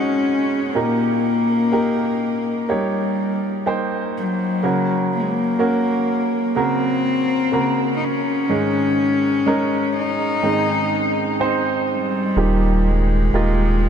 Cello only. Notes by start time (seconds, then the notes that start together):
Already playing: C#4
0.78 A#3
2.71 G3
4.18 F#3
5.15 A#3
5.21 G#3
5.29 A#3
6.60 C4
7.97 D#4
8.05 C#4
9.99 D#4
11.92 G3
12.88 G#3